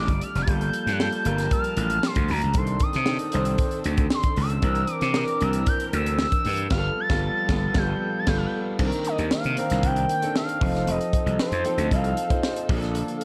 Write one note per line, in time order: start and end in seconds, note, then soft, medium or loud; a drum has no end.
0.00 0.10 A1 medium
0.00 0.45 D#3 medium
0.00 0.47 G3 medium
0.00 0.45 A3 medium
0.00 0.48 D4 medium
0.00 0.49 D#4 medium
0.00 0.47 F4 medium
0.00 0.45 G4 medium
0.00 0.48 A4 medium
0.00 0.45 D5 medium
0.00 0.24 D6 loud
0.08 0.19 G1 medium
0.08 kick medium
0.08 closed hi-hat medium
0.21 0.43 F6 medium
0.21 closed hi-hat medium
0.35 0.45 F1 medium
0.35 snare soft
0.35 closed hi-hat soft
0.42 0.49 A6 medium
0.47 0.69 G1 loud
0.47 2.53 F3 medium
0.47 0.85 G3 medium
0.47 2.53 A#3 medium
0.47 0.86 A#3 medium
0.47 0.86 F4 medium
0.47 0.86 A4 medium
0.47 2.53 A5 medium
0.47 0.92 G6 loud
0.47 kick loud
0.47 closed hi-hat medium
0.61 closed hi-hat soft
0.73 closed hi-hat medium
0.87 1.08 G2 loud
0.87 snare soft
0.87 closed hi-hat soft
0.92 1.01 F#6 medium
0.99 1.19 G3 medium
0.99 1.19 A#3 medium
0.99 1.19 F4 medium
0.99 1.19 A4 medium
0.99 1.51 G6 loud
0.99 snare loud
1.12 closed hi-hat medium
1.25 1.47 G1 loud
1.25 2.02 G3 medium
1.25 2.02 A#3 medium
1.25 2.03 F4 medium
1.25 2.03 A#4 medium
1.25 closed hi-hat medium
1.38 snare soft
1.38 closed hi-hat medium
1.51 2.07 F6 loud
1.51 kick medium
1.51 closed hi-hat medium
1.64 closed hi-hat soft
1.77 1.98 A1 medium
1.77 closed hi-hat medium
1.90 closed hi-hat medium
2.03 2.33 C6 loud
2.03 snare loud
2.15 2.27 D2 medium
2.15 kick medium
2.15 closed hi-hat medium
2.28 2.40 D2 medium
2.28 2.59 A#5 medium
2.28 open hi-hat medium
2.42 2.55 C#2 medium
2.42 closed hi-hat soft
2.54 2.76 C2 loud
2.54 2.94 D#3 medium
2.54 4.61 D#3 medium
2.54 2.94 C4 medium
2.54 6.68 D4 medium
2.54 2.94 D4 medium
2.54 4.61 A4 medium
2.54 2.94 A4 medium
2.54 2.84 C6 loud
2.54 kick loud
2.54 closed hi-hat medium
2.67 closed hi-hat soft
2.80 3.86 D#6 medium
2.80 kick medium
2.80 closed hi-hat medium
2.93 3.16 C3 loud
2.93 snare soft
2.93 closed hi-hat soft
3.06 3.26 D#3 medium
3.06 3.26 C4 medium
3.06 3.26 D4 medium
3.06 3.27 A4 medium
3.06 snare loud
3.19 closed hi-hat medium
3.32 3.55 C2 medium
3.32 4.10 D#3 medium
3.32 4.11 C4 medium
3.32 4.11 D4 medium
3.32 4.11 C5 medium
3.32 closed hi-hat medium
3.45 closed hi-hat medium
3.58 kick medium
3.58 closed hi-hat medium
3.71 closed hi-hat medium
3.84 4.07 D2 medium
3.84 closed hi-hat medium
3.97 kick medium
3.97 closed hi-hat medium
4.10 4.37 C6 medium
4.10 snare loud
4.23 kick medium
4.23 closed hi-hat medium
4.36 4.58 C#2 medium
4.36 open hi-hat medium
4.41 4.94 E6 loud
4.50 closed hi-hat soft
4.62 4.84 C2 loud
4.62 5.02 E3 medium
4.62 6.69 E3 medium
4.62 5.02 C4 medium
4.62 5.02 D4 medium
4.62 6.69 A#4 medium
4.62 5.02 A#4 medium
4.62 kick loud
4.62 closed hi-hat medium
4.75 closed hi-hat soft
4.87 closed hi-hat medium
4.94 5.17 D6 loud
5.01 5.23 C3 loud
5.01 snare soft
5.01 closed hi-hat soft
5.14 5.34 E3 medium
5.14 5.34 C4 medium
5.14 5.34 D4 medium
5.14 5.34 A#4 medium
5.14 5.44 D6 medium
5.14 snare loud
5.28 closed hi-hat medium
5.40 5.63 C2 medium
5.40 6.18 E3 medium
5.40 6.18 C4 medium
5.40 6.19 D4 medium
5.40 6.19 A#4 medium
5.40 5.69 E6 medium
5.40 closed hi-hat medium
5.53 closed hi-hat medium
5.66 5.80 G6 loud
5.66 kick loud
5.66 closed hi-hat medium
5.80 5.87 G6 medium
5.80 closed hi-hat medium
5.93 6.25 D2 loud
5.93 6.18 E6 loud
5.93 closed hi-hat medium
6.06 closed hi-hat medium
6.19 6.69 E6 loud
6.19 snare loud
6.32 kick medium
6.32 closed hi-hat medium
6.45 6.67 G2 medium
6.45 open hi-hat medium
6.57 closed hi-hat soft
6.70 6.88 G1 loud
6.70 8.77 F3 medium
6.70 6.89 G3 medium
6.70 8.77 B3 medium
6.70 6.89 B3 medium
6.70 6.89 F4 medium
6.70 8.77 A4 medium
6.70 7.02 F6 loud
6.70 kick loud
6.70 snare loud
6.70 crash medium
6.78 6.93 A4 loud
7.00 7.79 A6 loud
7.09 7.28 G1 loud
7.09 7.27 G3 loud
7.09 7.28 B3 loud
7.09 7.28 F4 loud
7.09 7.28 A4 loud
7.09 kick loud
7.09 snare loud
7.49 7.67 G1 loud
7.49 7.67 G3 loud
7.49 7.67 B3 loud
7.49 7.68 F4 loud
7.49 7.68 A4 loud
7.49 kick loud
7.49 snare loud
7.74 7.93 G1 loud
7.74 7.93 G3 loud
7.74 7.93 B3 loud
7.74 7.93 F4 loud
7.74 7.94 A4 loud
7.74 8.21 G6 loud
7.74 kick loud
7.74 snare loud
8.19 8.29 A6 medium
8.27 8.45 G1 loud
8.27 8.45 G3 loud
8.27 8.45 B3 loud
8.27 8.46 F4 loud
8.27 8.46 A4 loud
8.27 8.39 G6 medium
8.27 kick loud
8.27 snare loud
8.27 crash medium
8.37 8.48 F6 medium
8.46 8.54 G6 medium
8.79 8.90 C2 loud
8.79 9.37 D#3 medium
8.79 10.59 D#3 medium
8.79 10.59 A#3 medium
8.79 9.38 C4 medium
8.79 10.59 D4 medium
8.79 9.38 D4 medium
8.79 8.86 A4 medium
8.79 kick loud
8.79 crash loud
8.86 9.41 A#4 medium
8.92 closed hi-hat soft
9.05 9.18 D#5 medium
9.05 closed hi-hat medium
9.18 9.29 D#2 medium
9.18 closed hi-hat soft
9.31 9.87 F5 loud
9.31 muted slap bass stroke soft
9.31 snare loud
9.44 9.56 C3 medium
9.44 closed hi-hat medium
9.57 10.06 D#3 medium
9.57 10.06 C4 medium
9.57 10.06 D4 medium
9.57 10.07 A#4 medium
9.57 closed hi-hat medium
9.70 9.81 C2 medium
9.70 snare soft
9.70 closed hi-hat medium
9.83 10.05 C2 loud
9.83 10.10 G5 loud
9.83 kick medium
9.83 closed hi-hat medium
9.96 closed hi-hat medium
10.09 10.34 G5 loud
10.09 closed hi-hat medium
10.22 10.61 D#3 medium
10.22 10.60 C4 medium
10.22 10.62 D4 medium
10.22 10.60 A4 medium
10.22 closed hi-hat medium
10.36 10.91 F5 loud
10.36 snare loud
10.49 closed hi-hat medium
10.60 10.83 F1 medium
10.60 12.67 F3 medium
10.60 11.44 F3 medium
10.60 11.45 C4 medium
10.60 12.67 D#4 medium
10.60 11.45 D#4 medium
10.60 13.24 A4 medium
10.60 11.45 A4 medium
10.60 kick loud
10.60 open hi-hat medium
10.75 snare soft
10.75 closed hi-hat soft
10.87 10.98 F1 loud
10.87 11.40 D#5 loud
10.87 closed hi-hat medium
11.01 closed hi-hat soft
11.13 kick medium
11.13 closed hi-hat medium
11.26 11.37 C2 medium
11.26 closed hi-hat soft
11.39 11.89 C5 loud
11.39 muted slap bass stroke soft
11.39 snare loud
11.52 11.63 F2 loud
11.52 closed hi-hat medium
11.64 12.13 F3 medium
11.64 12.14 C4 medium
11.64 12.14 D#4 medium
11.64 12.14 A4 medium
11.64 closed hi-hat medium
11.78 11.89 D2 medium
11.78 closed hi-hat medium
11.91 12.13 C2 medium
11.91 12.66 F5 medium
11.91 kick loud
11.91 closed hi-hat medium
12.04 closed hi-hat soft
12.17 closed hi-hat medium
12.30 12.67 F3 medium
12.30 12.70 C4 medium
12.30 12.70 D#4 medium
12.30 12.70 C5 medium
12.30 kick medium
12.30 closed hi-hat medium
12.43 snare loud
12.56 closed hi-hat medium
12.69 13.02 A#1 loud
12.69 13.24 D3 medium
12.69 13.24 F3 medium
12.69 13.24 A#3 medium
12.69 13.24 D4 medium
12.69 12.76 G#4 medium
12.69 kick loud
12.69 open hi-hat medium
12.77 13.24 A4 loud
12.82 snare soft
12.82 closed hi-hat soft
12.95 closed hi-hat medium
13.08 closed hi-hat medium
13.17 13.24 F5 medium